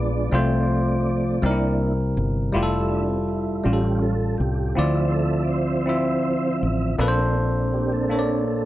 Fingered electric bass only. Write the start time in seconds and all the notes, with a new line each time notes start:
Already playing: A#1
0.32 C2
1.43 C2
2.17 G1
2.55 F1
3.66 A1
4.40 C2
4.78 D2
6.63 A1
6.99 A#1